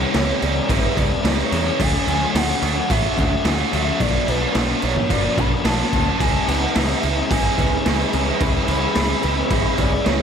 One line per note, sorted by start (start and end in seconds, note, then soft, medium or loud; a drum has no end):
0.00 0.12 C#3 loud
0.00 0.12 C#3 medium
0.00 0.13 E3 medium
0.00 0.14 E3 medium
0.00 0.96 E3 medium
0.00 0.15 G#3 medium
0.00 0.14 G#3 medium
0.00 0.14 B3 medium
0.00 0.17 C#4 medium
0.00 0.15 C#4 medium
0.00 0.15 E4 medium
0.00 0.40 G#4 medium
0.00 0.44 C#5 loud
0.14 0.32 C#2 loud
0.14 0.69 C#3 loud
0.14 0.41 C#3 loud
0.14 0.39 E3 loud
0.14 0.30 E3 loud
0.14 0.40 G#3 loud
0.14 0.29 G#3 loud
0.14 0.68 B3 medium
0.14 0.42 C#4 loud
0.14 0.27 C#4 loud
0.14 0.41 E4 loud
0.14 snare loud
0.14 crash medium
0.28 0.41 E3 medium
0.28 0.42 G#3 medium
0.28 0.43 C#4 medium
0.40 0.59 C#2 loud
0.40 0.55 E3 medium
0.40 0.55 G#3 medium
0.40 0.55 C#4 medium
0.40 0.54 E4 medium
0.40 1.51 G#4 medium
0.40 0.72 D5 medium
0.40 muted overdriven electric guitar stroke medium
0.40 crash medium
0.55 0.70 E3 medium
0.55 0.71 G#3 medium
0.55 0.72 C#4 medium
0.55 muted overdriven electric guitar stroke medium
0.68 0.87 G#1 loud
0.68 0.96 C#3 loud
0.68 1.10 E3 medium
0.68 0.86 E3 loud
0.68 0.84 G#3 medium
0.68 0.84 G#3 loud
0.68 1.22 B3 medium
0.68 0.83 C#4 medium
0.68 0.82 E4 medium
0.68 0.99 E5 medium
0.68 kick loud
0.68 crash loud
0.73 0.82 C#4 loud
0.83 1.11 G#3 medium
0.83 0.98 G#3 medium
0.83 1.00 C#4 medium
0.83 1.10 C#4 medium
0.83 1.10 E4 medium
0.87 0.97 E3 medium
0.97 1.14 C#2 loud
0.97 1.51 C#3 medium
0.97 1.40 E3 medium
0.97 1.39 G#3 medium
0.97 1.37 C#4 medium
0.97 1.25 D5 medium
0.97 kick medium
0.97 crash medium
1.11 muted overdriven electric guitar stroke medium
1.24 1.42 C#2 loud
1.24 1.78 C#3 loud
1.24 1.49 E3 loud
1.24 1.50 G#3 loud
1.24 1.79 B3 medium
1.24 1.51 C#4 loud
1.24 1.52 E4 loud
1.24 1.83 C#5 loud
1.24 snare loud
1.24 crash medium
1.39 1.52 E3 medium
1.39 1.53 G#3 medium
1.39 1.54 C#4 medium
1.50 1.69 E2 medium
1.50 1.78 C#3 medium
1.50 1.77 E3 medium
1.50 1.67 E3 medium
1.50 1.65 G#3 medium
1.50 1.64 C#4 medium
1.50 1.63 E4 medium
1.50 1.80 G#4 medium
1.50 snare soft
1.50 crash medium
1.54 1.66 G#3 medium
1.54 1.64 C#4 medium
1.64 1.78 G#3 medium
1.64 1.79 G#3 medium
1.64 1.78 C#4 medium
1.64 1.77 E4 medium
1.68 1.79 E3 medium
1.78 1.97 D2 loud
1.78 2.34 D3 loud
1.78 2.05 D3 medium
1.78 2.07 F#3 loud
1.78 2.33 A3 medium
1.78 2.23 A3 loud
1.78 2.08 A3 loud
1.78 2.22 D4 loud
1.78 2.09 D4 loud
1.78 2.20 F#4 loud
1.78 2.38 G#5 loud
1.78 kick loud
1.78 crash loud
2.07 2.25 D2 medium
2.07 2.33 D3 medium
2.07 2.35 F#3 medium
2.07 2.36 A3 medium
2.07 2.37 D4 loud
2.07 crash medium
2.21 2.35 A3 medium
2.21 2.36 D4 medium
2.21 2.36 F#4 medium
2.34 2.52 D2 loud
2.34 2.62 D3 loud
2.34 2.52 F#3 loud
2.34 2.89 A3 medium
2.34 2.63 A3 loud
2.34 2.50 A3 loud
2.34 2.64 D4 loud
2.34 2.48 D4 loud
2.34 2.65 F#4 loud
2.34 2.92 F#5 loud
2.34 snare loud
2.34 crash loud
2.49 2.63 F#3 medium
2.49 2.63 A3 medium
2.49 2.63 D4 medium
2.62 2.80 D2 loud
2.62 2.89 D3 medium
2.62 2.76 A3 medium
2.62 2.76 D4 medium
2.62 3.72 F#4 medium
2.62 2.75 F#4 medium
2.62 muted overdriven electric guitar stroke medium
2.62 crash medium
2.75 2.88 F#3 medium
2.75 2.90 A3 medium
2.75 2.91 D4 medium
2.75 muted overdriven electric guitar stroke medium
2.89 3.07 A1 loud
2.89 3.15 D3 medium
2.89 3.31 D3 medium
2.89 3.05 F#3 loud
2.89 3.16 A3 medium
2.89 3.04 A3 loud
2.89 3.04 A3 medium
2.89 3.03 D4 loud
2.89 3.02 D4 loud
2.89 3.02 F#4 medium
2.89 3.47 E5 loud
2.89 kick loud
2.89 crash loud
3.03 3.16 F#3 medium
3.03 3.17 A3 medium
3.03 3.32 A3 medium
3.03 3.18 D4 medium
3.03 3.31 D4 medium
3.03 3.31 F#4 medium
3.16 3.35 D2 loud
3.16 3.70 D3 medium
3.16 3.60 F#3 medium
3.16 3.44 A3 medium
3.16 3.59 A3 loud
3.16 3.57 D4 loud
3.16 kick medium
3.16 crash medium
3.32 muted overdriven electric guitar stroke medium
3.44 3.62 D2 loud
3.44 3.72 D3 loud
3.44 3.99 A3 medium
3.44 3.73 A3 loud
3.44 3.74 D4 loud
3.44 3.74 F#4 loud
3.44 3.75 F#5 loud
3.44 snare loud
3.44 crash medium
3.58 3.71 F#3 medium
3.58 3.72 A3 medium
3.58 3.74 D4 medium
3.71 3.90 D2 medium
3.71 3.98 D3 medium
3.71 3.99 D3 medium
3.71 3.88 F#3 medium
3.71 3.86 A3 medium
3.71 3.88 A3 medium
3.71 3.85 D4 medium
3.71 3.86 D4 medium
3.71 4.00 F#4 medium
3.71 4.02 E5 loud
3.71 crash medium
3.75 3.85 F#4 medium
3.86 4.00 F#3 medium
3.86 3.99 A3 medium
3.86 4.00 A3 medium
3.86 3.98 D4 medium
3.86 3.99 D4 medium
3.86 3.99 F#4 medium
4.00 4.17 B1 loud
4.00 4.25 B2 loud
4.00 4.54 B2 loud
4.00 4.26 F#3 loud
4.00 4.54 F#3 medium
4.00 4.54 A3 medium
4.00 4.28 B3 loud
4.00 4.44 B3 loud
4.00 4.42 D4 loud
4.00 4.28 D4 loud
4.00 4.40 F#4 loud
4.00 4.30 D5 loud
4.00 kick loud
4.00 crash medium
4.26 4.45 B1 loud
4.26 4.52 B2 medium
4.26 4.53 F#3 medium
4.26 4.55 B3 medium
4.26 5.66 D4 medium
4.26 4.55 D4 medium
4.26 4.85 B4 loud
4.26 crash medium
4.42 4.55 B3 medium
4.42 4.56 D4 medium
4.42 4.56 F#4 medium
4.53 4.72 B1 medium
4.53 4.82 B2 loud
4.53 5.10 B2 loud
4.53 4.70 F#3 loud
4.53 4.81 F#3 loud
4.53 5.08 A3 medium
4.53 4.69 B3 loud
4.53 4.83 B3 medium
4.53 4.67 D4 loud
4.53 snare loud
4.53 crash medium
4.57 4.83 D4 loud
4.57 4.84 F#4 loud
4.68 4.82 F#3 medium
4.68 4.83 B3 medium
4.68 4.83 D4 medium
4.82 5.00 B1 medium
4.82 4.96 F#3 medium
4.82 4.96 B3 medium
4.82 4.95 D4 medium
4.82 5.91 F#4 medium
4.82 4.95 F#4 medium
4.82 5.11 C#5 loud
4.82 muted overdriven electric guitar stroke medium
4.82 crash medium
4.95 5.08 F#3 medium
4.95 5.11 B3 medium
4.95 5.11 D4 medium
4.95 muted overdriven electric guitar stroke medium
4.95 kick medium
5.09 5.27 F#1 medium
5.09 5.36 B2 loud
5.09 5.51 F#3 medium
5.09 5.25 F#3 loud
5.09 5.36 A3 medium
5.09 5.25 B3 medium
5.09 5.24 B3 loud
5.09 5.24 D4 medium
5.09 5.22 D4 loud
5.09 5.22 F#4 medium
5.09 5.40 D5 loud
5.09 kick loud
5.09 crash medium
5.23 5.37 F#3 medium
5.23 5.39 B3 medium
5.23 5.51 B3 medium
5.23 5.39 D4 medium
5.23 5.51 D4 medium
5.23 5.50 F#4 medium
5.37 5.55 B1 loud
5.37 5.92 B2 medium
5.37 5.81 F#3 medium
5.37 5.63 A3 medium
5.37 5.81 B3 medium
5.37 5.78 D4 medium
5.37 5.65 B5 loud
5.37 kick medium
5.37 crash medium
5.51 muted overdriven electric guitar stroke medium
5.65 5.82 B1 loud
5.65 6.19 B2 loud
5.65 5.92 F#3 loud
5.65 5.93 B3 loud
5.65 5.93 D4 loud
5.65 5.94 F#4 loud
5.65 6.22 A5 loud
5.65 snare loud
5.65 crash medium
5.79 5.93 F#3 medium
5.79 5.95 B3 medium
5.79 5.95 D4 medium
5.92 6.10 D2 medium
5.92 6.19 B2 medium
5.92 6.19 F#3 medium
5.92 6.08 F#3 medium
5.92 6.09 B3 medium
5.92 6.08 B3 medium
5.92 6.07 D4 medium
5.92 6.05 D4 medium
5.92 6.20 F#4 medium
5.92 6.06 F#4 medium
5.92 kick medium
5.92 crash medium
6.07 6.20 F#3 medium
6.07 6.22 B3 medium
6.07 6.19 D4 medium
6.07 6.20 D4 medium
6.07 6.19 F#4 medium
6.20 6.37 C#2 medium
6.20 6.46 C#3 loud
6.20 6.75 C#3 loud
6.20 6.76 E3 loud
6.20 6.47 G#3 loud
6.20 6.63 G#3 medium
6.20 6.48 C#4 loud
6.20 6.62 C#4 loud
6.20 6.61 E4 loud
6.20 6.49 E4 loud
6.20 10.22 G#4 medium
6.20 10.22 C#5 medium
6.20 10.22 E5 medium
6.20 6.49 G#5 loud
6.20 10.22 B5 medium
6.20 kick loud
6.20 crash medium
6.46 6.66 C#2 medium
6.46 6.74 C#3 medium
6.46 6.75 G#3 medium
6.46 6.74 B3 medium
6.46 6.77 C#4 medium
6.46 6.77 E4 medium
6.46 6.77 F#5 loud
6.46 crash medium
6.61 6.76 G#3 medium
6.61 6.77 C#4 medium
6.61 6.77 E4 medium
6.74 6.93 C#2 loud
6.74 7.03 C#3 medium
6.74 7.85 C#3 loud
6.74 7.03 E3 loud
6.74 6.92 G#3 loud
6.74 7.03 G#3 loud
6.74 7.29 B3 medium
6.74 6.91 C#4 loud
6.74 7.04 C#4 loud
6.74 6.89 E4 loud
6.74 7.04 E4 loud
6.74 7.30 E5 loud
6.74 snare loud
6.74 crash loud
6.90 7.03 G#3 medium
6.90 7.04 C#4 medium
6.90 7.04 E4 medium
7.02 7.21 C#2 medium
7.02 7.17 E3 medium
7.02 7.17 G#3 medium
7.02 7.17 C#4 medium
7.02 7.16 E4 medium
7.02 8.12 G#4 medium
7.02 muted overdriven electric guitar stroke medium
7.02 crash medium
7.16 7.30 G#3 medium
7.16 7.32 C#4 medium
7.16 7.32 E4 medium
7.16 muted overdriven electric guitar stroke medium
7.30 7.48 G#1 medium
7.30 7.57 C#3 medium
7.30 7.72 E3 medium
7.30 7.46 G#3 loud
7.30 7.45 G#3 medium
7.30 7.84 B3 medium
7.30 7.45 C#4 medium
7.30 7.46 C#4 loud
7.30 7.43 E4 medium
7.30 7.43 E4 loud
7.30 8.10 G#5 loud
7.30 kick loud
7.30 crash loud
7.44 7.72 G#3 medium
7.44 7.58 G#3 medium
7.44 7.72 C#4 medium
7.44 7.59 C#4 medium
7.44 7.60 E4 medium
7.44 7.71 E4 medium
7.57 7.75 C#2 loud
7.57 8.12 C#3 medium
7.57 8.39 E3 medium
7.57 8.01 G#3 medium
7.57 8.01 C#4 medium
7.57 7.98 E4 medium
7.57 kick medium
7.57 crash medium
7.72 muted overdriven electric guitar stroke medium
7.85 8.03 C#2 medium
7.85 8.40 C#3 loud
7.85 8.12 E3 loud
7.85 8.13 G#3 loud
7.85 8.67 B3 medium
7.85 8.14 C#4 loud
7.85 8.14 E4 loud
7.85 snare loud
7.85 crash loud
7.99 8.13 G#3 medium
7.99 8.14 C#4 medium
7.99 8.15 E4 medium
8.13 8.31 C#2 medium
8.13 8.39 C#3 medium
8.13 8.40 E3 medium
8.13 8.28 G#3 medium
8.13 8.28 C#4 medium
8.13 8.26 E4 medium
8.13 8.25 E4 loud
8.13 9.22 G#4 medium
8.13 crash medium
8.26 8.40 G#3 medium
8.26 8.41 G#3 medium
8.26 8.42 C#4 medium
8.26 8.42 E4 medium
8.26 8.41 E4 medium
8.40 8.58 C#2 loud
8.40 8.66 C#3 loud
8.40 8.94 C#3 loud
8.40 9.77 E3 medium
8.40 8.95 E3 loud
8.40 8.68 G#3 loud
8.40 8.83 G#3 medium
8.40 8.69 C#4 loud
8.40 8.82 C#4 loud
8.40 8.80 E4 loud
8.40 8.69 E4 loud
8.40 9.75 B5 loud
8.40 kick loud
8.40 crash medium
8.68 8.86 C#2 loud
8.68 8.94 C#3 medium
8.68 8.96 G#3 medium
8.68 8.94 B3 medium
8.68 8.97 C#4 medium
8.68 8.97 E4 medium
8.68 crash medium
8.82 8.95 G#3 medium
8.82 8.96 C#4 medium
8.82 8.96 E4 medium
8.95 9.13 C#2 medium
8.95 9.51 C#3 loud
8.95 9.22 C#3 loud
8.95 9.21 E3 loud
8.95 9.22 G#3 loud
8.95 9.11 G#3 loud
8.95 9.50 B3 medium
8.95 9.23 C#4 loud
8.95 9.11 C#4 loud
8.95 9.23 E4 loud
8.95 9.08 E4 loud
8.95 snare loud
8.95 crash medium
9.09 9.23 G#3 medium
9.09 9.24 C#4 medium
9.09 9.23 E4 medium
9.22 9.41 C#2 medium
9.22 9.36 E3 medium
9.22 9.36 G#3 medium
9.22 9.36 C#4 medium
9.22 9.35 E4 medium
9.22 10.22 G#4 medium
9.22 muted overdriven electric guitar stroke medium
9.22 crash medium
9.36 9.50 G#3 medium
9.36 9.50 C#4 medium
9.36 9.52 E4 medium
9.36 muted overdriven electric guitar stroke medium
9.50 9.68 G#1 medium
9.50 9.77 C#3 medium
9.50 9.92 E3 medium
9.50 9.66 G#3 loud
9.50 9.65 G#3 medium
9.50 9.65 C#4 loud
9.50 9.64 C#4 medium
9.50 9.63 E4 medium
9.50 9.63 E4 loud
9.50 kick loud
9.50 crash medium
9.64 9.92 G#3 medium
9.64 9.78 G#3 medium
9.64 9.92 C#4 medium
9.64 9.79 C#4 medium
9.64 9.91 E4 medium
9.64 9.80 E4 medium
9.78 9.96 C#2 loud
9.78 10.22 C#3 medium
9.78 10.22 E3 medium
9.78 10.21 G#3 medium
9.78 10.20 C#4 medium
9.78 10.18 E4 medium
9.78 10.05 D5 loud
9.78 kick medium
9.78 crash medium
9.92 muted overdriven electric guitar stroke medium
10.05 10.22 C#2 loud
10.05 10.22 C#3 loud
10.05 10.22 E3 loud
10.05 10.22 G#3 loud
10.05 10.22 B3 medium
10.05 10.22 C#4 loud
10.05 10.22 E4 loud
10.05 10.22 C#5 loud
10.05 snare loud
10.05 crash medium